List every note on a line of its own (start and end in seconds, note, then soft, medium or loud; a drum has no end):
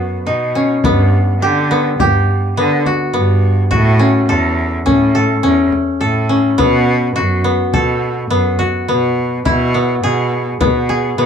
0.00 0.17 F#2 medium
0.00 0.84 B3 medium
0.00 1.48 F#4 medium
0.25 0.75 B2 medium
0.25 2.61 D#4 medium
0.55 3.06 C#4 medium
0.83 1.32 G2 medium
0.83 1.70 B3 medium
0.83 frame drum medium
1.40 1.90 D3 medium
1.40 2.00 G4 medium
1.71 2.57 B3 medium
1.71 frame drum soft
1.98 2.48 G2 medium
1.98 2.92 G4 medium
1.98 frame drum medium
2.56 2.81 D3 medium
2.56 3.13 B3 medium
2.86 3.70 F#4 medium
2.86 frame drum soft
3.13 3.62 G2 medium
3.13 5.83 B3 medium
3.43 frame drum soft
3.71 4.20 A2 loud
3.71 5.82 F#4 medium
3.71 frame drum medium
3.99 4.85 C#4 medium
4.29 4.78 E2 medium
4.29 5.14 A4 medium
4.86 5.35 A2 medium
4.86 5.43 C#4 medium
4.86 frame drum soft
5.15 6.00 A4 medium
5.43 5.68 E2 medium
5.43 6.29 C#4 medium
5.73 frame drum soft
6.01 6.50 A2 medium
6.01 7.73 A4 medium
6.29 8.80 C#4 medium
6.29 frame drum soft
6.58 7.07 B2 loud
6.58 7.44 B3 medium
6.58 frame drum medium
7.16 7.65 F#2 medium
7.16 8.58 F#4 medium
7.44 8.30 B3 medium
7.44 frame drum soft
7.73 8.22 B2 medium
7.73 9.64 A4 medium
7.73 frame drum medium
8.30 8.55 F#2 medium
8.30 8.88 B3 medium
8.59 10.70 F#4 medium
8.59 frame drum soft
8.88 9.38 B2 medium
8.88 9.74 B3 medium
9.17 frame drum soft
9.45 9.94 B2 loud
9.45 11.26 E4 medium
9.45 frame drum medium
9.74 10.60 B3 medium
10.03 10.52 B2 medium
10.03 10.89 G#4 medium
10.60 11.10 B2 medium
10.60 11.18 B3 medium
10.60 frame drum medium
10.89 11.26 G#4 medium
10.89 frame drum soft
11.18 11.26 B2 medium
11.18 11.26 B3 medium
11.18 frame drum soft